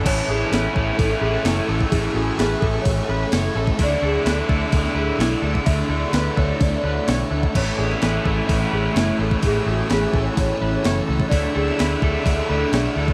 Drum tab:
CC |x---------------|----------------|----------------|----------------|
HH |o---o---o---o---|o---o---o---o---|o---o---o---o---|o---o---o---o---|
SD |----o----o--o---|----o-------o---|----o----o--o---|----o-------o---|
BD |o-----o-o------o|o-----o-o------o|o-----o-o------o|o-----o-o------o|

CC |x---------------|----------------|----------------|
HH |----o---o---o---|o---o---o---o---|o---o---o---o---|
SD |---oo-------o---|----o-------o---|---oo-------o---|
BD |o-----o-o------o|o-----o-o------o|o-----o-o------o|